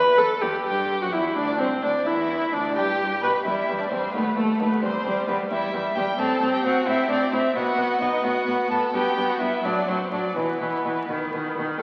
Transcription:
Already playing: viola B4
0.18 cello E2, viola A4
0.41 cello E2, viola G4
0.66 cello G2, viola G4, violin G4 G5
1.01 cello F#2, viola F#4, violin F#4 F#5
1.12 cello E2, viola E4, violin E4 E5
1.36 cello D2, viola D4, violin D4 D5
1.59 cello C2, viola C4, violin C4 C5
1.82 cello D2, violin D4 D5, viola D4
2.05 cello E2, violin E4 E5, viola E4
2.53 cello D2, viola D4, violin D4 D5
2.76 cello G2, viola G4, violin G4 G5
3.22 cello B2, viola B4, violin B4 B5
3.45 cello E2, viola G3, violin E4 E5
3.68 cello E2, viola G3
3.79 violin D4 D5
3.89 cello E2, viola G3, violin C4 C5
4.13 cello D#2, viola A3, violin B3 B4
4.36 cello D#2, violin A3 A4, viola A3
4.60 cello D#2, viola A3, violin B3 B4
4.82 cello E2, viola G3, violin C4 C5
5.05 cello E2, viola G3
5.27 cello E2, viola G3, violin B3 B4
5.49 cello E2, viola G3, violin E4 E5
5.74 cello E2, viola G3
5.95 cello E2, viola G3, violin G4 G5
6.18 cello A2, viola C4, violin A4 A5
6.42 cello A2, viola C4
6.52 violin G4 G5
6.64 cello A2, viola C4, violin F#4 F#5
6.87 cello A2, viola C4, violin E4 E5
7.09 cello A2, viola C4, violin D4 D5
7.32 cello A2, viola C4, violin E4 E5
7.55 cello B2, viola B3, violin F#4 F#5
7.77 cello B2, viola B3
8.01 cello B2, viola B3, violin D#4 D#5
8.23 cello A2, viola B3, violin F#4 F#5
8.46 cello A2, viola B3
8.70 cello A2, viola B3, violin A4 A5
8.93 cello G2, viola B3, violin G4 G5
9.16 cello G2, viola B3
9.30 violin F#4 F#5
9.40 cello G2, viola B3, violin E4 E5
9.64 cello A2, viola F#3, violin D4 D5
9.87 cello A2, viola F#3, violin C4 C5
10.12 cello A2, viola F#3, violin D4 D5
10.36 cello B2, viola E3, violin B3 B4
10.60 cello B2, viola E3
10.85 cello B2, viola E3
11.09 cello B2, viola D#3
11.33 cello B2, viola D#3
11.57 cello B2, viola D#3

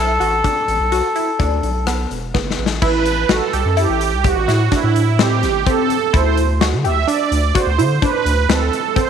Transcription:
Already playing: analog synth bass B1, synth arpeggio sound E4, trumpet A4
0.20 analog synth bass A1, synth arpeggio sound F#4, closed hi-hat
0.44 synth arpeggio sound D4, kick, closed hi-hat
0.68 analog synth bass A1, closed hi-hat
0.80 analog synth bass B1
0.92 synth arpeggio sound F#4, closed hi-hat
1.16 synth arpeggio sound E4, closed hi-hat
1.39 analog synth bass D2, synth arpeggio sound D4, kick, closed hi-hat
1.63 analog synth bass B1, closed hi-hat
1.87 synth arpeggio sound B3, cross-stick, closed hi-hat
2.11 analog synth bass E1, closed hi-hat
2.34 analog synth bass F#1, synth arpeggio sound B3, kick, snare
2.51 snare
2.59 analog synth bass A1
2.66 snare
2.82 analog synth bass A1, synth arpeggio sound E4, analog synth pad B4, kick, crash
3.06 closed hi-hat
3.29 analog synth bass A1, synth arpeggio sound F#4, analog synth pad A4, snare, closed hi-hat
3.53 analog synth bass C2, synth arpeggio sound G4, closed hi-hat
3.65 analog synth bass F#2
3.77 synth arpeggio sound E4, analog synth pad G4, closed hi-hat
3.89 analog synth bass A1
4.01 closed hi-hat
4.13 analog synth bass C2
4.24 analog synth pad F#4, synth arpeggio sound G4, kick, closed hi-hat
4.36 analog synth bass A1
4.48 analog synth bass A2, synth arpeggio sound E4, snare, closed hi-hat
4.72 synth arpeggio sound D4, analog synth pad E4, kick, snare, closed hi-hat
4.84 analog synth bass A2
4.96 closed hi-hat
5.19 synth arpeggio sound C4, analog synth pad G4, snare, closed hi-hat
5.43 analog synth bass G1, snare, closed hi-hat
5.66 synth arpeggio sound C4, analog synth pad A4, kick, closed hi-hat
5.90 closed hi-hat
6.13 analog synth bass D2, synth arpeggio sound E4, analog synth pad C5, kick, closed hi-hat
6.37 closed hi-hat
6.61 synth arpeggio sound F#4, snare, closed hi-hat
6.73 analog synth bass D3
6.84 analog synth bass D2, synth arpeggio sound G4, analog synth pad E5, closed hi-hat
7.07 synth arpeggio sound D4, analog synth pad D5, closed hi-hat
7.32 analog synth bass D2, closed hi-hat
7.55 synth arpeggio sound F#4, analog synth pad C5, kick, closed hi-hat
7.67 analog synth bass D2
7.78 analog synth bass D3, synth arpeggio sound E4, closed hi-hat
8.02 synth arpeggio sound D4, analog synth pad B4, kick, closed hi-hat
8.25 analog synth bass D2, closed hi-hat
8.49 analog synth bass D2, synth arpeggio sound C4, analog synth pad A4, snare, closed hi-hat
8.73 closed hi-hat
8.96 synth arpeggio sound C4, analog synth pad C5, kick, closed hi-hat

